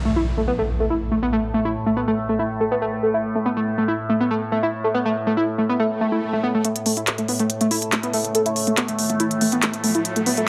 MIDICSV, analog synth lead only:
0, 0, Header, 1, 2, 480
1, 0, Start_track
1, 0, Tempo, 425532
1, 1737, Time_signature, 4, 2, 24, 8
1, 11830, End_track
2, 0, Start_track
2, 0, Title_t, "Analog synth lead"
2, 0, Program_c, 0, 81
2, 56, Note_on_c, 0, 57, 77
2, 124, Note_off_c, 0, 57, 0
2, 181, Note_on_c, 0, 64, 76
2, 219, Note_off_c, 0, 64, 0
2, 421, Note_on_c, 0, 57, 76
2, 459, Note_off_c, 0, 57, 0
2, 536, Note_on_c, 0, 59, 97
2, 577, Note_off_c, 0, 59, 0
2, 661, Note_on_c, 0, 57, 98
2, 699, Note_off_c, 0, 57, 0
2, 901, Note_on_c, 0, 57, 76
2, 964, Note_off_c, 0, 57, 0
2, 1016, Note_on_c, 0, 64, 77
2, 1057, Note_off_c, 0, 64, 0
2, 1256, Note_on_c, 0, 57, 81
2, 1297, Note_off_c, 0, 57, 0
2, 1381, Note_on_c, 0, 59, 101
2, 1419, Note_off_c, 0, 59, 0
2, 1496, Note_on_c, 0, 57, 99
2, 1537, Note_off_c, 0, 57, 0
2, 1736, Note_on_c, 0, 57, 80
2, 1804, Note_off_c, 0, 57, 0
2, 1861, Note_on_c, 0, 64, 76
2, 1899, Note_off_c, 0, 64, 0
2, 2101, Note_on_c, 0, 57, 76
2, 2139, Note_off_c, 0, 57, 0
2, 2216, Note_on_c, 0, 59, 97
2, 2257, Note_off_c, 0, 59, 0
2, 2341, Note_on_c, 0, 57, 101
2, 2379, Note_off_c, 0, 57, 0
2, 2581, Note_on_c, 0, 57, 77
2, 2644, Note_off_c, 0, 57, 0
2, 2696, Note_on_c, 0, 64, 82
2, 2737, Note_off_c, 0, 64, 0
2, 2937, Note_on_c, 0, 57, 81
2, 2977, Note_off_c, 0, 57, 0
2, 3061, Note_on_c, 0, 59, 99
2, 3099, Note_off_c, 0, 59, 0
2, 3176, Note_on_c, 0, 57, 100
2, 3217, Note_off_c, 0, 57, 0
2, 3416, Note_on_c, 0, 57, 77
2, 3484, Note_off_c, 0, 57, 0
2, 3542, Note_on_c, 0, 64, 78
2, 3579, Note_off_c, 0, 64, 0
2, 3781, Note_on_c, 0, 57, 75
2, 3819, Note_off_c, 0, 57, 0
2, 3896, Note_on_c, 0, 59, 102
2, 3937, Note_off_c, 0, 59, 0
2, 4021, Note_on_c, 0, 57, 99
2, 4059, Note_off_c, 0, 57, 0
2, 4261, Note_on_c, 0, 57, 75
2, 4324, Note_off_c, 0, 57, 0
2, 4377, Note_on_c, 0, 64, 75
2, 4417, Note_off_c, 0, 64, 0
2, 4617, Note_on_c, 0, 57, 84
2, 4657, Note_off_c, 0, 57, 0
2, 4741, Note_on_c, 0, 59, 104
2, 4779, Note_off_c, 0, 59, 0
2, 4857, Note_on_c, 0, 57, 103
2, 4897, Note_off_c, 0, 57, 0
2, 5096, Note_on_c, 0, 57, 80
2, 5164, Note_off_c, 0, 57, 0
2, 5221, Note_on_c, 0, 64, 77
2, 5259, Note_off_c, 0, 64, 0
2, 5461, Note_on_c, 0, 57, 75
2, 5499, Note_off_c, 0, 57, 0
2, 5576, Note_on_c, 0, 59, 98
2, 5617, Note_off_c, 0, 59, 0
2, 5701, Note_on_c, 0, 57, 102
2, 5739, Note_off_c, 0, 57, 0
2, 5941, Note_on_c, 0, 57, 77
2, 6004, Note_off_c, 0, 57, 0
2, 6056, Note_on_c, 0, 64, 81
2, 6097, Note_off_c, 0, 64, 0
2, 6296, Note_on_c, 0, 57, 76
2, 6337, Note_off_c, 0, 57, 0
2, 6421, Note_on_c, 0, 59, 97
2, 6459, Note_off_c, 0, 59, 0
2, 6536, Note_on_c, 0, 57, 103
2, 6577, Note_off_c, 0, 57, 0
2, 6777, Note_on_c, 0, 57, 81
2, 6844, Note_off_c, 0, 57, 0
2, 6901, Note_on_c, 0, 64, 74
2, 6939, Note_off_c, 0, 64, 0
2, 7141, Note_on_c, 0, 57, 75
2, 7179, Note_off_c, 0, 57, 0
2, 7256, Note_on_c, 0, 59, 106
2, 7297, Note_off_c, 0, 59, 0
2, 7381, Note_on_c, 0, 57, 104
2, 7419, Note_off_c, 0, 57, 0
2, 7496, Note_on_c, 0, 57, 96
2, 7537, Note_off_c, 0, 57, 0
2, 7736, Note_on_c, 0, 57, 78
2, 7804, Note_off_c, 0, 57, 0
2, 7861, Note_on_c, 0, 64, 75
2, 7899, Note_off_c, 0, 64, 0
2, 8101, Note_on_c, 0, 57, 75
2, 8139, Note_off_c, 0, 57, 0
2, 8216, Note_on_c, 0, 59, 100
2, 8257, Note_off_c, 0, 59, 0
2, 8341, Note_on_c, 0, 57, 99
2, 8379, Note_off_c, 0, 57, 0
2, 8581, Note_on_c, 0, 57, 75
2, 8644, Note_off_c, 0, 57, 0
2, 8696, Note_on_c, 0, 64, 78
2, 8737, Note_off_c, 0, 64, 0
2, 8936, Note_on_c, 0, 57, 86
2, 8977, Note_off_c, 0, 57, 0
2, 9061, Note_on_c, 0, 59, 102
2, 9099, Note_off_c, 0, 59, 0
2, 9177, Note_on_c, 0, 57, 102
2, 9217, Note_off_c, 0, 57, 0
2, 9417, Note_on_c, 0, 57, 80
2, 9484, Note_off_c, 0, 57, 0
2, 9541, Note_on_c, 0, 64, 76
2, 9579, Note_off_c, 0, 64, 0
2, 9781, Note_on_c, 0, 57, 77
2, 9819, Note_off_c, 0, 57, 0
2, 9896, Note_on_c, 0, 59, 105
2, 9937, Note_off_c, 0, 59, 0
2, 10021, Note_on_c, 0, 57, 102
2, 10059, Note_off_c, 0, 57, 0
2, 10261, Note_on_c, 0, 57, 75
2, 10324, Note_off_c, 0, 57, 0
2, 10376, Note_on_c, 0, 64, 82
2, 10417, Note_off_c, 0, 64, 0
2, 10616, Note_on_c, 0, 57, 80
2, 10657, Note_off_c, 0, 57, 0
2, 10741, Note_on_c, 0, 59, 100
2, 10778, Note_off_c, 0, 59, 0
2, 10856, Note_on_c, 0, 57, 102
2, 10897, Note_off_c, 0, 57, 0
2, 11096, Note_on_c, 0, 57, 81
2, 11164, Note_off_c, 0, 57, 0
2, 11221, Note_on_c, 0, 64, 77
2, 11258, Note_off_c, 0, 64, 0
2, 11461, Note_on_c, 0, 57, 73
2, 11499, Note_off_c, 0, 57, 0
2, 11576, Note_on_c, 0, 59, 96
2, 11617, Note_off_c, 0, 59, 0
2, 11701, Note_on_c, 0, 57, 96
2, 11739, Note_off_c, 0, 57, 0
2, 11830, End_track
0, 0, End_of_file